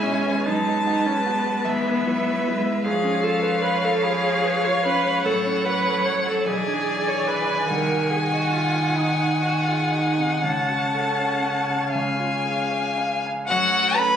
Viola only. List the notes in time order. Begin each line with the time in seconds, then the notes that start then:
0.03 C#4
0.46 D#4
0.85 D#4
1.06 C#4
1.25 B3
1.65 B3
2.85 G#4
3.23 A4
3.62 B4
3.85 A4
4.03 G#4
4.64 C#5
4.85 B4
5.25 A4
5.64 B4
6.05 C#5
6.28 A4
6.47 G#4
7.08 C#5
7.27 B4
7.69 A#4
8.10 G#4
8.33 F#4
8.53 F4
8.97 D#4
9.42 F#4
9.67 F4
9.91 D#4
10.42 C#4
13.49 C#5